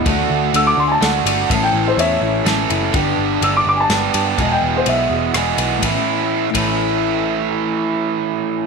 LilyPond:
<<
  \new Staff \with { instrumentName = "Grand piano" } { \time 3/4 \key a \mixolydian \tempo 4 = 124 r4 e'''16 d'''16 c'''16 <gis'' a''>4~ <gis'' a''>16~ | <gis'' a''>16 g''8 c''16 <cis'' e''>4 r4 | r4 e'''16 d'''16 d'''16 <gis'' a''>4~ <gis'' a''>16~ | <gis'' a''>16 g''8 c''16 e''4 r4 |
r2. | r2. | }
  \new Staff \with { instrumentName = "Steel-string acoustic guitar" } { \time 3/4 \key a \mixolydian <d a d' fis'>4 <d a d' fis'>8 <a d' fis'>8 <d a d' fis'>8 <a d' fis'>8 | <a, e b cis' e'>4 <e b cis' e'>8 <b cis' e'>8 <e b cis' e'>8 <b cis' e'>8 | <g, d g b d' g'>4 <g b d' g'>8 <g b d' g'>8 <g b d' g'>4 | <e, b, e gis b fis'>4 <e gis b fis'>8 <e gis b fis'>8 <e gis b fis'>4 |
<a, e b cis' e'>8 r4 <a, e b cis' e'>4.~ | <a, e b cis' e'>2. | }
  \new Staff \with { instrumentName = "Overdriven electric guitar" } { \time 3/4 \key a \mixolydian <d a d' fis'>2 <d a d' fis'>4 | <a, e a cis' a'>2 <a, e a cis' a'>4 | <g, d g b d' g'>2 <g, d g b d' g'>4 | <e, b, e gis b gis'>2 <e, b, e gis b gis'>4 |
<a, e a cis' e'>8 r4 <a, e a cis' e'>4.~ | <a, e a cis' e'>2. | }
  \new Staff \with { instrumentName = "Picked electric bass" } { \clef bass \time 3/4 \key a \mixolydian d,8 d,8 d,8 d,8 d,8 g,,8 | a,,8 a,,8 e,8 a,,8 a,,8 fis,,8 | g,,8 g,,8 g,,8 g,,8 g,,8 g,8 | e,,8 e,,8 b,,8 e,,8 e,,8 b,,8 |
a,,8 r4 a,,4.~ | a,,2. | }
  \new DrumStaff \with { instrumentName = "Drums" } \drummode { \time 3/4 <bd cymr>4 cymr4 <cymr sn>8 cymr8 | <bd cymr>4 cymr4 <cymr sn>8 cymr8 | <bd cymr>4 cymr4 <cymr sn>8 cymr8 | <bd cymr>4 cymr4 <cymr ss>8 cymr8 |
<bd cymr>4 r8 <bd cymr>8 r4 | r4 r4 r4 | }
>>